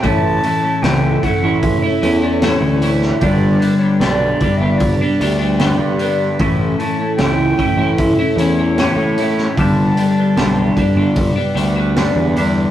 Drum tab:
HH |o-o-o-o-o-o-o-o-|o-o-o-o-o-o-o-o-|o-o-o-o-o-o-o-o-|o-o-o-o-o-o-o-o-|
SD |----o-------o--o|----o-------o---|----o-------o--o|----o-------o---|
BD |o-----o-o-------|o-----o-o-------|o-----o-o-------|o-----o-o-------|